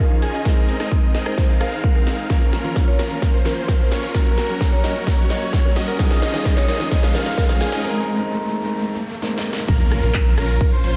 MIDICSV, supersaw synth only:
0, 0, Header, 1, 2, 480
1, 0, Start_track
1, 0, Key_signature, -5, "minor"
1, 0, Tempo, 461538
1, 472, Time_signature, 4, 2, 24, 8
1, 11405, End_track
2, 0, Start_track
2, 0, Title_t, "Supersaw synth"
2, 0, Program_c, 0, 81
2, 0, Note_on_c, 0, 61, 81
2, 0, Note_on_c, 0, 63, 73
2, 0, Note_on_c, 0, 65, 73
2, 0, Note_on_c, 0, 68, 71
2, 0, Note_on_c, 0, 77, 92
2, 203, Note_off_c, 0, 61, 0
2, 203, Note_off_c, 0, 63, 0
2, 203, Note_off_c, 0, 65, 0
2, 203, Note_off_c, 0, 68, 0
2, 203, Note_off_c, 0, 77, 0
2, 231, Note_on_c, 0, 61, 85
2, 231, Note_on_c, 0, 63, 80
2, 231, Note_on_c, 0, 65, 78
2, 231, Note_on_c, 0, 68, 79
2, 231, Note_on_c, 0, 80, 94
2, 334, Note_off_c, 0, 61, 0
2, 334, Note_off_c, 0, 63, 0
2, 334, Note_off_c, 0, 65, 0
2, 334, Note_off_c, 0, 68, 0
2, 334, Note_off_c, 0, 80, 0
2, 351, Note_on_c, 0, 61, 84
2, 351, Note_on_c, 0, 63, 77
2, 351, Note_on_c, 0, 65, 78
2, 351, Note_on_c, 0, 68, 75
2, 351, Note_on_c, 0, 75, 93
2, 454, Note_off_c, 0, 61, 0
2, 454, Note_off_c, 0, 63, 0
2, 454, Note_off_c, 0, 65, 0
2, 454, Note_off_c, 0, 68, 0
2, 454, Note_off_c, 0, 75, 0
2, 471, Note_on_c, 0, 63, 85
2, 471, Note_on_c, 0, 70, 85
2, 472, Note_on_c, 0, 60, 92
2, 472, Note_on_c, 0, 68, 84
2, 472, Note_on_c, 0, 75, 99
2, 803, Note_off_c, 0, 60, 0
2, 803, Note_off_c, 0, 63, 0
2, 803, Note_off_c, 0, 68, 0
2, 803, Note_off_c, 0, 70, 0
2, 803, Note_off_c, 0, 75, 0
2, 831, Note_on_c, 0, 60, 73
2, 831, Note_on_c, 0, 63, 71
2, 831, Note_on_c, 0, 68, 72
2, 831, Note_on_c, 0, 70, 69
2, 831, Note_on_c, 0, 75, 84
2, 1163, Note_off_c, 0, 60, 0
2, 1163, Note_off_c, 0, 63, 0
2, 1163, Note_off_c, 0, 68, 0
2, 1163, Note_off_c, 0, 70, 0
2, 1163, Note_off_c, 0, 75, 0
2, 1191, Note_on_c, 0, 63, 76
2, 1191, Note_on_c, 0, 68, 78
2, 1191, Note_on_c, 0, 70, 79
2, 1191, Note_on_c, 0, 75, 94
2, 1192, Note_on_c, 0, 60, 85
2, 1403, Note_off_c, 0, 60, 0
2, 1403, Note_off_c, 0, 63, 0
2, 1403, Note_off_c, 0, 68, 0
2, 1403, Note_off_c, 0, 70, 0
2, 1403, Note_off_c, 0, 75, 0
2, 1431, Note_on_c, 0, 60, 73
2, 1431, Note_on_c, 0, 63, 68
2, 1431, Note_on_c, 0, 68, 68
2, 1431, Note_on_c, 0, 70, 68
2, 1431, Note_on_c, 0, 75, 87
2, 1523, Note_off_c, 0, 60, 0
2, 1523, Note_off_c, 0, 63, 0
2, 1523, Note_off_c, 0, 68, 0
2, 1523, Note_off_c, 0, 70, 0
2, 1523, Note_off_c, 0, 75, 0
2, 1551, Note_on_c, 0, 60, 78
2, 1551, Note_on_c, 0, 63, 77
2, 1551, Note_on_c, 0, 68, 71
2, 1551, Note_on_c, 0, 70, 75
2, 1551, Note_on_c, 0, 77, 91
2, 1647, Note_off_c, 0, 68, 0
2, 1647, Note_off_c, 0, 77, 0
2, 1648, Note_off_c, 0, 60, 0
2, 1648, Note_off_c, 0, 63, 0
2, 1648, Note_off_c, 0, 70, 0
2, 1670, Note_on_c, 0, 60, 95
2, 1670, Note_on_c, 0, 63, 85
2, 1670, Note_on_c, 0, 68, 85
2, 1670, Note_on_c, 0, 70, 85
2, 1670, Note_on_c, 0, 77, 103
2, 1882, Note_off_c, 0, 68, 0
2, 1882, Note_off_c, 0, 70, 0
2, 1882, Note_off_c, 0, 77, 0
2, 1883, Note_off_c, 0, 60, 0
2, 1883, Note_off_c, 0, 63, 0
2, 1910, Note_on_c, 0, 60, 84
2, 1911, Note_on_c, 0, 63, 80
2, 1911, Note_on_c, 0, 68, 74
2, 1911, Note_on_c, 0, 70, 76
2, 1911, Note_on_c, 0, 78, 94
2, 2003, Note_off_c, 0, 60, 0
2, 2003, Note_off_c, 0, 63, 0
2, 2003, Note_off_c, 0, 68, 0
2, 2003, Note_off_c, 0, 70, 0
2, 2003, Note_off_c, 0, 78, 0
2, 2031, Note_on_c, 0, 60, 82
2, 2031, Note_on_c, 0, 63, 73
2, 2031, Note_on_c, 0, 68, 70
2, 2031, Note_on_c, 0, 70, 73
2, 2031, Note_on_c, 0, 77, 86
2, 2363, Note_off_c, 0, 60, 0
2, 2363, Note_off_c, 0, 63, 0
2, 2363, Note_off_c, 0, 68, 0
2, 2363, Note_off_c, 0, 70, 0
2, 2363, Note_off_c, 0, 77, 0
2, 2390, Note_on_c, 0, 61, 90
2, 2390, Note_on_c, 0, 65, 83
2, 2390, Note_on_c, 0, 70, 102
2, 2722, Note_off_c, 0, 61, 0
2, 2723, Note_off_c, 0, 65, 0
2, 2723, Note_off_c, 0, 70, 0
2, 2751, Note_on_c, 0, 61, 77
2, 2751, Note_on_c, 0, 65, 74
2, 2751, Note_on_c, 0, 70, 85
2, 3083, Note_off_c, 0, 61, 0
2, 3083, Note_off_c, 0, 65, 0
2, 3083, Note_off_c, 0, 70, 0
2, 3111, Note_on_c, 0, 61, 88
2, 3111, Note_on_c, 0, 65, 75
2, 3111, Note_on_c, 0, 70, 96
2, 3323, Note_off_c, 0, 61, 0
2, 3323, Note_off_c, 0, 65, 0
2, 3323, Note_off_c, 0, 70, 0
2, 3350, Note_on_c, 0, 65, 69
2, 3350, Note_on_c, 0, 70, 80
2, 3351, Note_on_c, 0, 61, 73
2, 3443, Note_off_c, 0, 61, 0
2, 3443, Note_off_c, 0, 65, 0
2, 3443, Note_off_c, 0, 70, 0
2, 3471, Note_on_c, 0, 61, 82
2, 3471, Note_on_c, 0, 65, 74
2, 3471, Note_on_c, 0, 72, 90
2, 4043, Note_off_c, 0, 61, 0
2, 4043, Note_off_c, 0, 65, 0
2, 4043, Note_off_c, 0, 72, 0
2, 4071, Note_on_c, 0, 61, 91
2, 4071, Note_on_c, 0, 65, 78
2, 4071, Note_on_c, 0, 73, 93
2, 4174, Note_off_c, 0, 61, 0
2, 4174, Note_off_c, 0, 65, 0
2, 4174, Note_off_c, 0, 73, 0
2, 4191, Note_on_c, 0, 61, 83
2, 4191, Note_on_c, 0, 65, 78
2, 4191, Note_on_c, 0, 70, 87
2, 4294, Note_off_c, 0, 61, 0
2, 4294, Note_off_c, 0, 65, 0
2, 4294, Note_off_c, 0, 70, 0
2, 4311, Note_on_c, 0, 61, 93
2, 4311, Note_on_c, 0, 66, 84
2, 4311, Note_on_c, 0, 70, 106
2, 4643, Note_off_c, 0, 61, 0
2, 4643, Note_off_c, 0, 66, 0
2, 4643, Note_off_c, 0, 70, 0
2, 4671, Note_on_c, 0, 66, 70
2, 4672, Note_on_c, 0, 61, 77
2, 4672, Note_on_c, 0, 70, 87
2, 5003, Note_off_c, 0, 61, 0
2, 5003, Note_off_c, 0, 66, 0
2, 5003, Note_off_c, 0, 70, 0
2, 5031, Note_on_c, 0, 61, 88
2, 5031, Note_on_c, 0, 66, 78
2, 5031, Note_on_c, 0, 70, 94
2, 5243, Note_off_c, 0, 61, 0
2, 5243, Note_off_c, 0, 66, 0
2, 5243, Note_off_c, 0, 70, 0
2, 5271, Note_on_c, 0, 61, 76
2, 5271, Note_on_c, 0, 66, 71
2, 5271, Note_on_c, 0, 70, 87
2, 5363, Note_off_c, 0, 61, 0
2, 5363, Note_off_c, 0, 66, 0
2, 5363, Note_off_c, 0, 70, 0
2, 5391, Note_on_c, 0, 61, 82
2, 5391, Note_on_c, 0, 73, 90
2, 5392, Note_on_c, 0, 66, 76
2, 5963, Note_off_c, 0, 61, 0
2, 5963, Note_off_c, 0, 66, 0
2, 5963, Note_off_c, 0, 73, 0
2, 5992, Note_on_c, 0, 61, 91
2, 5992, Note_on_c, 0, 66, 76
2, 5992, Note_on_c, 0, 75, 93
2, 6094, Note_off_c, 0, 61, 0
2, 6094, Note_off_c, 0, 66, 0
2, 6094, Note_off_c, 0, 75, 0
2, 6111, Note_on_c, 0, 61, 83
2, 6111, Note_on_c, 0, 70, 91
2, 6112, Note_on_c, 0, 66, 81
2, 6214, Note_off_c, 0, 61, 0
2, 6214, Note_off_c, 0, 66, 0
2, 6214, Note_off_c, 0, 70, 0
2, 6232, Note_on_c, 0, 61, 93
2, 6232, Note_on_c, 0, 63, 89
2, 6232, Note_on_c, 0, 65, 84
2, 6232, Note_on_c, 0, 68, 84
2, 6232, Note_on_c, 0, 75, 102
2, 6563, Note_off_c, 0, 61, 0
2, 6563, Note_off_c, 0, 63, 0
2, 6563, Note_off_c, 0, 65, 0
2, 6563, Note_off_c, 0, 68, 0
2, 6563, Note_off_c, 0, 75, 0
2, 6591, Note_on_c, 0, 65, 69
2, 6591, Note_on_c, 0, 75, 84
2, 6592, Note_on_c, 0, 61, 78
2, 6592, Note_on_c, 0, 63, 72
2, 6592, Note_on_c, 0, 68, 70
2, 6923, Note_off_c, 0, 61, 0
2, 6923, Note_off_c, 0, 63, 0
2, 6923, Note_off_c, 0, 65, 0
2, 6923, Note_off_c, 0, 68, 0
2, 6923, Note_off_c, 0, 75, 0
2, 6952, Note_on_c, 0, 61, 85
2, 6952, Note_on_c, 0, 63, 79
2, 6952, Note_on_c, 0, 65, 78
2, 6952, Note_on_c, 0, 68, 78
2, 6952, Note_on_c, 0, 75, 94
2, 7163, Note_off_c, 0, 61, 0
2, 7163, Note_off_c, 0, 63, 0
2, 7163, Note_off_c, 0, 65, 0
2, 7163, Note_off_c, 0, 68, 0
2, 7163, Note_off_c, 0, 75, 0
2, 7191, Note_on_c, 0, 61, 75
2, 7191, Note_on_c, 0, 65, 70
2, 7192, Note_on_c, 0, 63, 66
2, 7192, Note_on_c, 0, 68, 69
2, 7192, Note_on_c, 0, 75, 87
2, 7283, Note_off_c, 0, 61, 0
2, 7283, Note_off_c, 0, 63, 0
2, 7283, Note_off_c, 0, 65, 0
2, 7283, Note_off_c, 0, 68, 0
2, 7283, Note_off_c, 0, 75, 0
2, 7311, Note_on_c, 0, 61, 83
2, 7311, Note_on_c, 0, 63, 74
2, 7311, Note_on_c, 0, 65, 76
2, 7311, Note_on_c, 0, 68, 73
2, 7311, Note_on_c, 0, 77, 90
2, 7883, Note_off_c, 0, 61, 0
2, 7883, Note_off_c, 0, 63, 0
2, 7883, Note_off_c, 0, 65, 0
2, 7883, Note_off_c, 0, 68, 0
2, 7883, Note_off_c, 0, 77, 0
2, 7911, Note_on_c, 0, 61, 92
2, 7911, Note_on_c, 0, 63, 81
2, 7911, Note_on_c, 0, 65, 82
2, 7911, Note_on_c, 0, 68, 84
2, 7911, Note_on_c, 0, 80, 101
2, 8014, Note_off_c, 0, 61, 0
2, 8014, Note_off_c, 0, 63, 0
2, 8014, Note_off_c, 0, 65, 0
2, 8014, Note_off_c, 0, 68, 0
2, 8014, Note_off_c, 0, 80, 0
2, 8032, Note_on_c, 0, 61, 83
2, 8032, Note_on_c, 0, 63, 80
2, 8032, Note_on_c, 0, 65, 78
2, 8032, Note_on_c, 0, 68, 76
2, 8032, Note_on_c, 0, 75, 92
2, 8134, Note_off_c, 0, 61, 0
2, 8134, Note_off_c, 0, 63, 0
2, 8134, Note_off_c, 0, 65, 0
2, 8134, Note_off_c, 0, 68, 0
2, 8134, Note_off_c, 0, 75, 0
2, 10072, Note_on_c, 0, 61, 92
2, 10072, Note_on_c, 0, 65, 85
2, 10072, Note_on_c, 0, 70, 105
2, 10403, Note_off_c, 0, 65, 0
2, 10403, Note_off_c, 0, 70, 0
2, 10404, Note_off_c, 0, 61, 0
2, 10432, Note_on_c, 0, 61, 76
2, 10432, Note_on_c, 0, 65, 72
2, 10432, Note_on_c, 0, 70, 87
2, 10763, Note_off_c, 0, 61, 0
2, 10763, Note_off_c, 0, 65, 0
2, 10763, Note_off_c, 0, 70, 0
2, 10792, Note_on_c, 0, 61, 90
2, 10792, Note_on_c, 0, 65, 82
2, 10793, Note_on_c, 0, 70, 98
2, 11003, Note_off_c, 0, 61, 0
2, 11003, Note_off_c, 0, 65, 0
2, 11004, Note_off_c, 0, 70, 0
2, 11032, Note_on_c, 0, 61, 76
2, 11032, Note_on_c, 0, 65, 70
2, 11032, Note_on_c, 0, 70, 82
2, 11123, Note_off_c, 0, 61, 0
2, 11123, Note_off_c, 0, 65, 0
2, 11123, Note_off_c, 0, 70, 0
2, 11152, Note_on_c, 0, 61, 84
2, 11152, Note_on_c, 0, 65, 76
2, 11152, Note_on_c, 0, 72, 92
2, 11248, Note_off_c, 0, 61, 0
2, 11248, Note_off_c, 0, 65, 0
2, 11248, Note_off_c, 0, 72, 0
2, 11271, Note_on_c, 0, 72, 102
2, 11272, Note_on_c, 0, 61, 93
2, 11272, Note_on_c, 0, 65, 85
2, 11405, Note_off_c, 0, 61, 0
2, 11405, Note_off_c, 0, 65, 0
2, 11405, Note_off_c, 0, 72, 0
2, 11405, End_track
0, 0, End_of_file